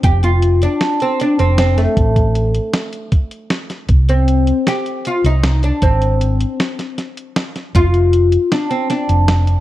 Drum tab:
HH |xxxxxxxxxx|xxxxxxxxxx|xxxxxxxxxx|xxxxxxxxxx|
SD |----o---oo|----o---oo|----o---o-|----ooo-oo|
BD |o---------|oo----o---|o---------|o---------|

HH |xxxxxxxxxx|
SD |----o-o-o-|
BD |o---------|